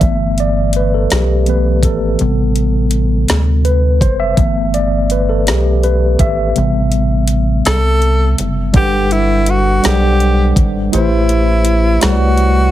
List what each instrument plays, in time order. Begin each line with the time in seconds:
Already playing: tine electric piano E5
0.01 analog synth bass G1, tine electric piano E3 A3 B3, kick, closed hi-hat
0.38 tine electric piano D5, closed hi-hat
0.73 tine electric piano B4, closed hi-hat
0.94 tine electric piano A4
1.10 analog synth bass B1, tine electric piano G4, snare, closed hi-hat
1.46 tine electric piano E3 A3 B3 B4, closed hi-hat
1.83 analog synth bass G#1, tine electric piano A4, kick, closed hi-hat
2.19 analog synth bass A1, tine electric piano C3 G3 B3, closed hi-hat
2.56 closed hi-hat
2.91 closed hi-hat
3.28 analog synth bass D2, snare, closed hi-hat
3.65 tine electric piano B4, closed hi-hat
4.01 analog synth bass F#1, tine electric piano C5, kick, closed hi-hat
4.20 tine electric piano E5
4.37 analog synth bass G1, tine electric piano E3 A3 B3, kick, closed hi-hat
4.74 tine electric piano D5, closed hi-hat
5.10 tine electric piano B4, closed hi-hat
5.29 tine electric piano A4
5.47 analog synth bass B1, tine electric piano G4, snare, closed hi-hat
5.83 tine electric piano B4, closed hi-hat
6.19 analog synth bass G#1, tine electric piano E5, kick, closed hi-hat
6.55 analog synth bass A1, tine electric piano C3 G3 B3, closed hi-hat
6.92 closed hi-hat
7.28 closed hi-hat
7.65 analog synth bass C2, tenor saxophone A4, snare, closed hi-hat
8.02 closed hi-hat
8.38 analog synth bass F#1, closed hi-hat
8.73 analog synth bass G1, tine electric piano G3 D4 A4 B4 F#5, tenor saxophone G4, kick, closed hi-hat
9.11 tenor saxophone E4, closed hi-hat
9.46 tenor saxophone F#4, closed hi-hat
9.82 analog synth bass B1, tine electric piano G3 D4 A4 C5 F#5, tenor saxophone G4, snare, closed hi-hat
9.93 tine electric piano D5
10.20 closed hi-hat
10.56 analog synth bass G#1, kick, closed hi-hat
10.92 analog synth bass A1, tine electric piano A3 E4 G4 B4 C5, tenor saxophone E4, closed hi-hat
11.29 closed hi-hat
11.65 closed hi-hat
12.01 analog synth bass C2, tine electric piano G3 A3 E4 B4, tenor saxophone F#4, snare, closed hi-hat
12.05 tine electric piano C#5
12.11 tine electric piano D5
12.37 closed hi-hat